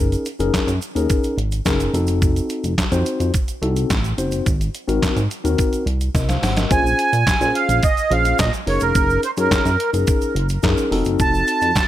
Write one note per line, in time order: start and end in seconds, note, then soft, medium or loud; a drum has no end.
0.00 0.16 F#1 loud
0.00 0.26 C#4 medium
0.00 0.26 D#4 medium
0.00 0.26 G#4 medium
0.00 0.26 A#4 medium
0.12 closed hi-hat soft
0.12 shaker soft
0.25 closed hi-hat medium
0.25 shaker soft
0.39 0.51 F#1 medium
0.39 0.71 C#4 medium
0.39 0.71 D#4 medium
0.39 0.71 G#4 medium
0.39 0.72 A#4 loud
0.39 closed hi-hat soft
0.39 shaker medium
0.54 kick loud
0.54 snare loud
0.54 clap loud
0.54 closed hi-hat medium
0.54 shaker medium
0.67 0.79 F#2 loud
0.67 closed hi-hat medium
0.67 shaker medium
0.82 closed hi-hat medium
0.82 shaker medium
0.95 1.07 D#2 medium
0.95 1.35 C#4 loud
0.95 1.35 D#4 medium
0.95 1.35 G#4 medium
0.95 1.35 A#4 loud
0.95 closed hi-hat soft
0.95 shaker medium
1.10 kick loud
1.10 closed hi-hat medium
1.10 shaker medium
1.24 closed hi-hat soft
1.24 shaker medium
1.38 1.61 G#1 medium
1.38 closed hi-hat medium
1.52 closed hi-hat soft
1.52 shaker soft
1.66 1.89 F#1 medium
1.66 1.94 C#4 medium
1.66 1.93 D#4 medium
1.66 1.94 G#4 medium
1.66 1.94 A#4 loud
1.66 kick loud
1.66 snare loud
1.66 clap medium
1.66 closed hi-hat medium
1.66 shaker medium
1.80 closed hi-hat soft
1.80 shaker medium
1.94 2.40 F1 medium
1.94 2.72 C4 medium
1.94 2.72 D#4 medium
1.94 2.73 F#4 medium
1.94 2.73 A4 loud
1.94 closed hi-hat medium
1.94 shaker medium
2.07 closed hi-hat soft
2.07 shaker medium
2.22 kick loud
2.22 closed hi-hat medium
2.22 shaker medium
2.36 closed hi-hat medium
2.36 shaker medium
2.49 closed hi-hat medium
2.49 shaker soft
2.64 2.76 F1 medium
2.64 closed hi-hat soft
2.64 shaker medium
2.78 kick loud
2.78 snare loud
2.78 clap medium
2.78 closed hi-hat medium
2.78 shaker medium
2.92 3.04 F2 loud
2.92 3.31 C4 medium
2.92 3.31 D#4 medium
2.92 3.32 F#4 medium
2.92 3.32 C5 loud
2.92 closed hi-hat medium
2.92 shaker medium
3.06 closed hi-hat medium
3.06 shaker medium
3.20 3.32 F2 medium
3.20 closed hi-hat soft
3.20 shaker medium
3.34 kick loud
3.34 closed hi-hat medium
3.34 shaker medium
3.48 closed hi-hat soft
3.48 shaker medium
3.62 3.85 C2 medium
3.62 3.93 C4 medium
3.62 3.94 D#4 medium
3.62 3.94 F#4 medium
3.62 3.94 A4 loud
3.62 closed hi-hat medium
3.76 closed hi-hat soft
3.76 shaker soft
3.90 4.14 A1 medium
3.90 kick loud
3.90 snare loud
3.90 clap medium
3.90 closed hi-hat medium
3.90 shaker medium
4.04 closed hi-hat soft
4.04 shaker medium
4.18 4.42 F#1 medium
4.18 4.46 C4 medium
4.18 4.46 D#4 medium
4.18 4.46 F#4 medium
4.18 4.46 C5 medium
4.18 closed hi-hat medium
4.18 shaker medium
4.31 closed hi-hat soft
4.31 shaker medium
4.46 4.70 G#1 loud
4.46 kick loud
4.46 closed hi-hat medium
4.46 shaker medium
4.61 closed hi-hat medium
4.61 shaker medium
4.74 closed hi-hat medium
4.74 shaker soft
4.88 5.00 G#1 loud
4.88 5.20 C4 loud
4.88 5.20 D#4 medium
4.88 5.20 F#4 medium
4.88 5.20 A#4 loud
4.88 closed hi-hat soft
4.88 shaker medium
5.02 5.08 G#2 soft
5.02 kick loud
5.02 snare loud
5.02 clap loud
5.02 closed hi-hat medium
5.02 shaker medium
5.16 5.28 G#2 medium
5.16 closed hi-hat medium
5.16 shaker medium
5.31 closed hi-hat medium
5.31 shaker medium
5.44 5.56 D#2 medium
5.44 5.84 C4 loud
5.44 5.84 D#4 medium
5.44 5.84 F#4 medium
5.44 5.84 A#4 loud
5.44 closed hi-hat soft
5.44 shaker medium
5.58 kick loud
5.58 closed hi-hat medium
5.58 shaker medium
5.73 closed hi-hat soft
5.73 shaker medium
5.86 6.10 C2 medium
5.86 closed hi-hat medium
6.01 closed hi-hat soft
6.01 shaker soft
6.15 6.38 C2 medium
6.15 6.28 A#4 medium
6.15 6.28 D#5 medium
6.15 kick loud
6.15 snare medium
6.15 closed hi-hat medium
6.15 shaker medium
6.29 6.42 C5 medium
6.29 6.42 F5 medium
6.29 snare medium
6.29 closed hi-hat soft
6.29 shaker medium
6.43 6.66 G#1 medium
6.43 6.56 C5 medium
6.43 6.56 F#5 medium
6.43 snare medium
6.43 open hi-hat medium
6.43 shaker medium
6.57 6.84 A#4 medium
6.57 6.83 D#5 medium
6.57 snare medium
6.57 closed hi-hat soft
6.57 shaker medium
6.71 6.94 A#1 loud
6.71 7.10 C#4 medium
6.71 7.10 F4 medium
6.71 7.10 G#4 medium
6.71 7.10 C5 medium
6.71 7.58 G#5 loud
6.71 kick loud
6.71 closed hi-hat medium
6.71 shaker medium
6.86 shaker medium
6.99 closed hi-hat medium
6.99 shaker soft
7.13 7.25 A#2 medium
7.13 closed hi-hat soft
7.13 shaker medium
7.27 7.32 A#2 soft
7.27 kick loud
7.27 snare loud
7.27 clap loud
7.27 closed hi-hat medium
7.27 shaker medium
7.41 7.52 A#2 loud
7.41 7.80 C#4 medium
7.41 7.80 F4 medium
7.41 7.80 G#4 medium
7.41 7.80 C5 medium
7.41 closed hi-hat soft
7.41 shaker medium
7.55 7.84 F5 loud
7.55 closed hi-hat medium
7.69 7.80 A#1 medium
7.69 closed hi-hat medium
7.69 shaker medium
7.83 8.12 D#5 loud
7.83 kick loud
7.83 closed hi-hat medium
7.83 shaker medium
7.97 closed hi-hat soft
7.97 shaker medium
8.10 8.34 A#1 loud
8.10 8.42 C#4 medium
8.10 8.42 F4 medium
8.10 8.43 G#4 medium
8.10 8.43 C5 medium
8.10 8.38 F5 loud
8.10 closed hi-hat medium
8.25 closed hi-hat soft
8.25 shaker soft
8.39 8.51 A#2 loud
8.39 8.52 D#5 medium
8.39 kick loud
8.39 snare loud
8.39 clap medium
8.39 closed hi-hat medium
8.39 shaker medium
8.53 closed hi-hat soft
8.53 shaker medium
8.67 8.79 F#1 loud
8.67 9.23 C#4 medium
8.67 9.23 D#4 medium
8.67 9.23 G#4 medium
8.67 9.23 A#4 medium
8.67 8.82 C#5 medium
8.67 open hi-hat medium
8.80 8.93 F1 medium
8.80 9.21 A#4 medium
8.80 closed hi-hat soft
8.80 shaker medium
8.95 9.18 F#1 loud
8.95 kick loud
8.95 closed hi-hat medium
8.95 shaker medium
9.10 shaker medium
9.23 9.31 C5 medium
9.23 closed hi-hat medium
9.23 shaker soft
9.37 9.49 F#2 loud
9.37 9.69 C#4 medium
9.37 9.69 D#4 medium
9.37 9.69 G#4 medium
9.37 9.90 A#4 medium
9.37 9.69 C#5 medium
9.37 closed hi-hat soft
9.37 shaker medium
9.51 9.57 F#2 medium
9.51 kick loud
9.51 snare loud
9.51 clap loud
9.51 closed hi-hat medium
9.51 shaker medium
9.65 9.77 F#2 loud
9.65 closed hi-hat soft
9.65 shaker medium
9.80 closed hi-hat medium
9.93 10.05 F#1 medium
9.93 10.32 C#4 medium
9.93 10.33 D#4 medium
9.93 10.33 G#4 medium
9.93 10.33 A#4 medium
9.93 closed hi-hat medium
9.93 shaker medium
10.07 kick loud
10.07 closed hi-hat medium
10.07 shaker medium
10.21 closed hi-hat soft
10.21 shaker medium
10.35 10.58 F#1 loud
10.35 closed hi-hat medium
10.49 closed hi-hat medium
10.49 shaker soft
10.63 10.75 F#2 loud
10.63 10.91 C#4 loud
10.63 10.90 D#4 medium
10.63 10.91 G#4 medium
10.63 10.92 A#4 loud
10.63 kick loud
10.63 snare loud
10.63 clap medium
10.63 closed hi-hat medium
10.63 shaker medium
10.78 closed hi-hat soft
10.78 shaker medium
10.91 11.03 F1 loud
10.91 11.70 C4 loud
10.91 11.70 D#4 medium
10.91 11.70 F#4 medium
10.91 11.70 A4 loud
10.91 open hi-hat medium
11.05 11.17 F#1 medium
11.05 closed hi-hat medium
11.05 shaker medium
11.19 11.43 F1 loud
11.19 11.88 A5 loud
11.19 kick loud
11.19 closed hi-hat medium
11.19 shaker medium
11.34 shaker medium
11.47 closed hi-hat medium
11.47 shaker soft
11.61 11.73 F2 loud
11.61 closed hi-hat medium
11.61 shaker medium
11.75 11.81 F2 soft
11.75 kick loud
11.75 snare loud
11.75 clap loud
11.75 closed hi-hat medium
11.75 shaker medium